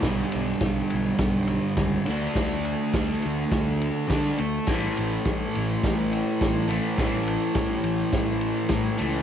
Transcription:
<<
  \new Staff \with { instrumentName = "Distorted electric guitar" } { \clef bass \time 4/4 \key d \major \tempo 4 = 104 <g, d g>2.~ <g, d g>8 <d a d'>8~ | <d a d'>2. <d a d'>8 r8 | <a, e a>2.~ <a, e a>8 <a, e a>8 | <a, e a>2.~ <a, e a>8 <a, e a>8 | }
  \new Staff \with { instrumentName = "Fingered electric bass" } { \clef bass \time 4/4 \key d \major b,,8 b,,8 b,,8 b,,8 b,,4 cis,8 d,8 | d,4 d,8 d,8 d,4 d8 d,8 | a,,8 a,,8 a,,8 a,,8 a,,4 a,,4 | a,,4 a,,8 a,,8 a,,4 a,8 cis,8 | }
  \new DrumStaff \with { instrumentName = "Drums" } \drummode { \time 4/4 <bd cymr sn>8 cymr8 <bd cymr sn>8 cymr8 <bd cymr sn>8 cymr8 <bd cymr sn>8 cymr8 | <bd cymr sn>8 cymr8 <bd cymr sn>8 cymr8 <bd cymr sn>8 cymr8 <bd cymr sn>8 cymr8 | <cymc bd sn>8 cymr8 <bd cymr sn>8 cymr8 <bd cymr sn>8 cymr8 <bd cymr sn>8 cymr8 | <bd cymr sn>8 cymr8 <bd cymr sn>8 cymr8 <bd cymr sn>8 cymr8 <bd cymr sn>8 cymr8 | }
>>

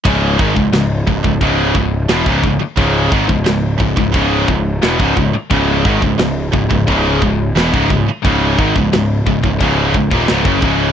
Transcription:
<<
  \new Staff \with { instrumentName = "Distorted electric guitar" } { \clef bass \time 4/4 \key cis \minor \tempo 4 = 88 <cis, gis, cis>8 <gis, dis>16 <cis, gis,>16 <cis, gis,>8 <cis, gis,>16 <cis, gis,>16 <cis, gis, cis>8 <cis, gis,>8 <e, b,>16 <cis, gis,>16 <cis, gis,>16 r16 | <cis, gis, cis>8 <gis, dis>16 <cis, gis,>16 <cis, gis,>8 <cis, gis,>16 <cis, gis,>16 <cis, gis, cis>8 <cis, gis,>8 <e, b,>16 <cis, gis,>16 <cis, gis,>16 r16 | <cis, gis, cis>8 <gis, dis>16 <cis, gis,>16 <cis, gis,>8 <cis, gis,>16 <cis, gis,>16 <cis, gis, cis>8 <cis, gis,>8 <e, b,>16 <cis, gis,>16 <cis, gis,>16 r16 | <cis, gis, cis>8 <gis, dis>16 <cis, gis,>16 <cis, gis,>8 <cis, gis,>16 <cis, gis,>16 <cis, gis, cis>8 <cis, gis,>16 <dis, ais,>16 <cis, gis,>16 <fis, cis>16 <cis, gis, cis>8 | }
  \new Staff \with { instrumentName = "Distorted electric guitar" } { \clef bass \time 4/4 \key cis \minor <cis, gis, cis>8 <gis, dis>16 <cis, gis,>16 <cis, gis,>8 <cis, gis,>16 <cis, gis,>16 <cis, gis, cis>8 <cis, gis,>8 <e, b,>16 <cis, gis,>16 <cis, gis,>16 r16 | <cis, gis, cis>8 <gis, dis>16 <cis, gis,>16 <cis, gis,>8 <cis, gis,>16 <cis, gis,>16 <cis, gis, cis>8 <cis, gis,>8 <e, b,>16 <cis, gis,>16 <cis, gis,>16 r16 | <cis, gis, cis>8 <gis, dis>16 <cis, gis,>16 <cis, gis,>8 <cis, gis,>16 <cis, gis,>16 <cis, gis, cis>8 <cis, gis,>8 <e, b,>16 <cis, gis,>16 <cis, gis,>16 r16 | <cis, gis, cis>8 <gis, dis>16 <cis, gis,>16 <cis, gis,>8 <cis, gis,>16 <cis, gis,>16 <cis, gis, cis>8 <cis, gis,>16 <dis, ais,>16 <cis, gis,>16 <fis, cis>16 <cis, gis, cis>8 | }
  \new Staff \with { instrumentName = "Distorted electric guitar" } { \clef bass \time 4/4 \key cis \minor <cis, gis, cis>8 <gis, dis>16 <cis, gis,>16 <cis, gis,>8 <cis, gis,>16 <cis, gis,>16 <cis, gis, cis>8 <cis, gis,>8 <e, b,>16 <cis, gis,>16 <cis, gis,>16 r16 | <cis, gis, cis>8 <gis, dis>16 <cis, gis,>16 <cis, gis,>8 <cis, gis,>16 <cis, gis,>16 <cis, gis, cis>8 <cis, gis,>8 <e, b,>16 <cis, gis,>16 <cis, gis,>16 r16 | <cis, gis, cis>8 <gis, dis>16 <cis, gis,>16 <cis, gis,>8 <cis, gis,>16 <cis, gis,>16 <cis, gis, cis>8 <cis, gis,>8 <e, b,>16 <cis, gis,>16 <cis, gis,>16 r16 | <cis, gis, cis>8 <gis, dis>16 <cis, gis,>16 <cis, gis,>8 <cis, gis,>16 <cis, gis,>16 <cis, gis, cis>8 <cis, gis,>16 <dis, ais,>16 <cis, gis,>16 <fis, cis>16 <cis, gis, cis>8 | }
  \new Staff \with { instrumentName = "Picked electric bass" } { \clef bass \time 4/4 \key cis \minor cis,,8 gis,,16 cis,,16 cis,,8 cis,,16 cis,,16 cis,,8 cis,,8 e,,16 cis,,16 cis,,16 r16 | cis,,8 gis,,16 cis,,16 cis,,8 cis,,16 cis,,16 cis,,8 cis,,8 e,,16 cis,,16 cis,,16 r16 | cis,,8 gis,,16 cis,,16 cis,,8 cis,,16 cis,,16 cis,,8 cis,,8 e,,16 cis,,16 cis,,16 r16 | cis,,8 gis,,16 cis,,16 cis,,8 cis,,16 cis,,16 cis,,8 cis,,16 dis,,16 cis,,16 fis,,16 cis,,8 | }
  \new DrumStaff \with { instrumentName = "Drums" } \drummode { \time 4/4 <cymc bd>8 bd16 bd16 <cymc sn>8 bd16 bd16 <cymc bd>8 bd8 <cymc sn>16 bd16 bd8 | <cymc bd>8 bd16 bd16 <cymc sn>8 bd16 bd16 <cymc bd>8 bd8 <cymc sn>16 bd16 bd8 | <cymc bd>8 bd16 bd16 <cymc sn>8 bd16 bd16 <cymc bd>8 bd8 <cymc sn>16 bd16 bd8 | <cymc bd>8 bd16 bd16 <cymc sn>8 bd16 bd16 <cymc bd>8 bd16 bd16 <cymc sn>16 bd16 bd8 | }
>>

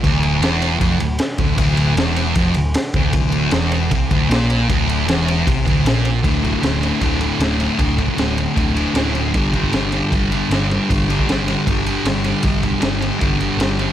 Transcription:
<<
  \new Staff \with { instrumentName = "Distorted electric guitar" } { \clef bass \time 4/4 \key g \dorian \tempo 4 = 155 d,4 e,4 f,8 d,8 r8 d,8 | d,4 e,4 f,8 d,8 r8 d,8 | d,4 e,4 c8 d,8 bes,4 | d,4 e,4 c8 d,8 bes,4 |
<d, a, d>8 <a, d>8 <d, a, d>8 <a, d>8 <d, a, d>8 <a, d>8 <d, a, d>8 <a, d>8 | <d, a, d>8 <a, d>8 <d, a, d>8 <a, d>8 <d, a, d>8 <a, d>8 <d, a, d>8 <a, d>8 | <g, d g>8 <d g>8 <g, d g>8 <d g>8 <g, d g>8 <d g>8 <g, d g>8 <d g>8 | <g, d g>8 <d g>8 <g, d g>8 <d g>8 <g, d g>8 <d g>8 <g, d g>8 <d g>8 |
<g, d g>8 <d g>8 <g, d g>8 <d g>8 <g, d g>8 <d g>8 <g, d g>8 <d g>8 | }
  \new Staff \with { instrumentName = "Picked electric bass" } { \clef bass \time 4/4 \key g \dorian d,,4 e,,4 f,,8 d,,8 r8 d,,8 | d,,4 e,,4 f,,8 d,,8 r8 d,,8 | d,,4 e,,4 c,8 d,,8 bes,,4 | d,,4 e,,4 c,8 d,,8 bes,,4 |
d,,4 d,,4 d,,4 d,,4 | d,,4 d,,4 d,,4 d,,4 | g,,4 g,,4 g,,4 g,,4 | g,,4 g,,4 g,,4 g,,4 |
g,,4 g,,4 g,,4 g,,4 | }
  \new DrumStaff \with { instrumentName = "Drums" } \drummode { \time 4/4 <cymc bd>8 cymr8 <cymr sn>8 cymr8 <bd cymr>8 cymr8 <cymr sn>8 <bd cymr>8 | <bd cymr>8 cymr8 <cymr sn>8 cymr8 <bd cymr>8 cymr8 <cymr sn>8 <bd cymr>8 | <bd cymr>8 cymr8 <cymr sn>8 cymr8 <bd cymr>8 <bd cymr>8 <cymr sn>8 cymr8 | <bd cymr>8 cymr8 <cymr sn>8 cymr8 <bd cymr>8 <bd cymr>8 <cymr sn>8 cymr8 |
<bd cymr>8 <bd cymr>16 bd16 <cymr sn>8 cymr8 <bd cymr>8 cymr8 <cymr sn>8 cymr8 | <bd cymr>8 <bd cymr>16 bd16 <cymr sn>8 cymr8 <bd cymr>8 cymr8 <cymr sn>16 sn16 cymr8 | <bd cymr>8 <bd cymr>16 bd16 <cymr sn>8 cymr8 <bd cymr>8 cymr8 <cymr sn>8 cymr8 | <bd cymr>8 cymr16 bd16 <cymr sn>8 cymr8 <bd cymr>8 cymr8 <cymr sn>8 cymr8 |
<bd cymr>8 <bd cymr>16 bd16 <cymr sn>8 cymr8 <bd cymr>8 cymr8 <cymr sn>8 cymr8 | }
>>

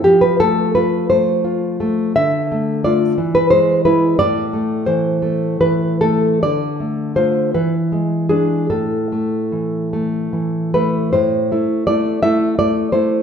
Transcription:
\new Staff \with { instrumentName = "Nylon-string guitar" } { \time 6/8 \key a \minor \tempo 4. = 56 << { g'16 b'16 a'8 b'8 c''8 r4 | e''4 d''8. b'16 c''8 b'8 | d''4 c''4 b'8 a'8 | d''4 c''8 b'4 gis'8 |
a'4. r4 b'8 | c''4 d''8 e''8 d''8 c''8 | } \\ { f8 a8 f'8 a8 f'8 a8 | d8 a8 <a f'>8 e8 gis8 <gis e'>8 | a,8 a8 e8 a8 e8 a8 | d8 a8 <a f'>8 e8 gis8 <gis d'>8 |
a,8 a8 e8 a8 e8 a8 | a,8 <a e'>8 <a e'>8 <a e'>8 <a e'>8 <a e'>8 | } >> }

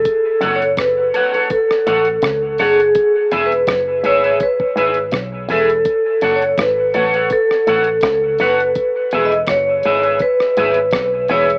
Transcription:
<<
  \new Staff \with { instrumentName = "Clean electric guitar" } { \time 4/4 \key fis \minor \tempo 4 = 83 r8 <a' cis'' fis''>16 r8. <a' cis'' fis''>16 <a' cis'' fis''>16 r8 <a' cis'' fis''>16 r8. <a' cis'' fis''>16 r16 | r8 <gis' b' e''>16 r8. <gis' b' e''>16 <gis' b' e''>16 r8 <gis' b' e''>16 r8. <gis' b' e''>16 r16 | r8 <a' cis'' fis''>16 r8. <a' cis'' fis''>16 <a' cis'' fis''>16 r8 <a' cis'' fis''>16 r8. <a' cis'' fis''>16 r16 | r8 <gis' b' e''>16 r8. <gis' b' e''>16 <gis' b' e''>16 r8 <gis' b' e''>16 r8. <gis' b' e''>16 r16 | }
  \new Staff \with { instrumentName = "Vibraphone" } { \time 4/4 \key fis \minor \tuplet 3/2 { a'4 cis''8 } b'4 a'4. gis'8~ | \tuplet 3/2 { gis'4 b'8~ } b'8 cis''8 b'4 r8 a'8~ | \tuplet 3/2 { a'4 cis''8 } b'4 a'4. b'8~ | \tuplet 3/2 { b'4 dis''8 } cis''4 b'4. cis''8 | }
  \new Staff \with { instrumentName = "Clean electric guitar" } { \clef bass \time 4/4 \key fis \minor r8 fis,8 r4. a,8 cis8 fis,8 | r8 e,8 fis,8 gis,8 r8 gis,8 b,8 e,8 | r8 fis,8 gis,8 a,8 r8 a,8 cis8 fis,8 | r8 e,8 fis,8 gis,8 r8 gis,8 b,8 e,8 | }
  \new Staff \with { instrumentName = "Fingered electric bass" } { \clef bass \time 4/4 \key fis \minor r8 fis,,4 r4 a,,8 cis,8 fis,,8 | r8 e,,8 fis,,8 gis,,8 r8 gis,,8 b,,8 e,,8 | r8 fis,,8 gis,,8 a,,8 r8 a,,8 cis,8 fis,,8 | r8 e,,8 fis,,8 gis,,8 r8 gis,,8 b,,8 e,,8 | }
  \new DrumStaff \with { instrumentName = "Drums" } \drummode { \time 4/4 <hh bd>8 hh16 hh16 <hh bd ss>8 hh16 hh16 <hh bd>16 ss16 hh16 hh16 <hh bd ss>8 hho16 hh16 | <hh bd>8 hh16 hh16 <hh bd ss>8 hh16 hh16 <hh bd>16 bd16 hh16 hh16 <hh bd ss>8 hho16 hh16 | <hh bd>8 hh16 hh16 <hh bd ss>8 hh16 hh16 <hh bd>16 ss16 hh16 hh16 <hh bd ss>8 hho16 hh16 | <hh bd>8 hh16 hh16 <hh bd ss>8 hh16 hh16 <hh bd>16 ss16 hh16 hh16 <hh bd ss>8 hho16 hh16 | }
>>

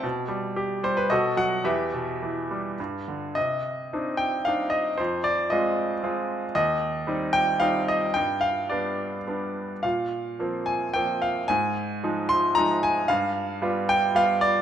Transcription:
<<
  \new Staff \with { instrumentName = "Grand piano" } { \time 3/4 \key g \major \tempo 4 = 111 << { r4. c''16 b'16 dis''8 fis''8 | e''2 r4 | \key c \minor ees''4. g''8 f''8 ees''8 | c''8 d''8 ees''4 r4 |
ees''4. g''8 f''8 ees''8 | g''8 f''8 d''4 r4 | f''4. aes''8 g''8 f''8 | aes''4. c'''8 bes''8 aes''8 |
f''4. g''8 f''8 d''8 | } \\ { r2 <fis' a'>4 | <g' b'>2 r4 | r2. | r2. |
r2. | r2. | r2. | r2. |
r2. | } >> }
  \new Staff \with { instrumentName = "Grand piano" } { \clef bass \time 3/4 \key g \major b,8 g8 g'8 g8 b,8 fis8 | e,8 b,8 e8 g8 g,8 d8 | \key c \minor c4 <c' d' ees'>4 <c' d' ees'>4 | f,4 <aes c' f'>4 <aes c' f'>4 |
ees,4 <g c' ees'>4 <g c' ees'>4 | g,4 <g b d'>4 <g b d'>4 | bes,4 <f bes c'>4 <f bes c'>4 | aes,4 <f aes ees'>4 <f aes ees'>4 |
g,4 <g b f'>4 <g b f'>4 | }
>>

